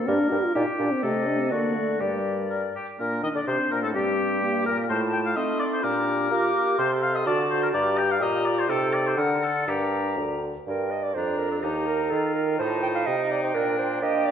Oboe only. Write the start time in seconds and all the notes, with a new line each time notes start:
0.08 A#4
0.55 G4
1.03 A4
1.51 F#4
2.00 G4
2.50 A#4
2.76 G4
3.00 A#4
3.24 D#5
3.36 D5
3.47 C5
3.71 A#4
3.83 A4
3.95 G4
4.66 A#4
4.89 C5
5.13 G5
5.25 F5
5.36 D#5
5.59 D5
5.73 C5
5.83 A#4
6.79 C5
7.02 F5
7.15 D#5
7.27 D5
7.50 C5
7.63 A#4
7.74 D5
7.98 G5
8.11 F5
8.22 D#5
8.45 D5
8.59 C5
8.70 A4
8.94 D5
9.07 C5
9.18 A#4
9.43 A4
9.69 G4
11.16 D4
11.63 D#4
12.12 F4
12.60 D#4
13.55 D4
14.02 G4